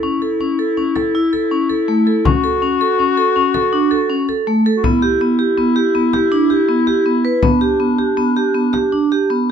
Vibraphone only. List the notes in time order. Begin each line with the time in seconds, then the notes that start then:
0.03 C#4
0.22 A4
0.41 C#4
0.59 A4
0.77 C#4
0.96 A4
1.15 E4
1.33 A4
1.51 C#4
1.70 A4
1.88 A3
2.07 A4
2.25 C#4
2.44 A4
2.62 C#4
2.81 A4
2.99 C#4
3.17 A4
3.36 C#4
3.54 A4
3.73 D4
3.91 A4
4.10 C#4
4.29 A4
4.47 A3
4.66 A4
4.84 B3
5.02 G4
5.21 B3
5.39 G4
5.57 B3
5.76 G4
5.95 B3
6.14 G4
6.32 D4
6.50 G4
6.69 B3
6.87 G4
7.06 B3
7.25 B4
7.43 B3
7.61 G4
7.80 B3
7.99 G4
8.17 B3
8.36 G4
8.55 B3
8.73 G4
8.92 D4
9.12 G4
9.30 B3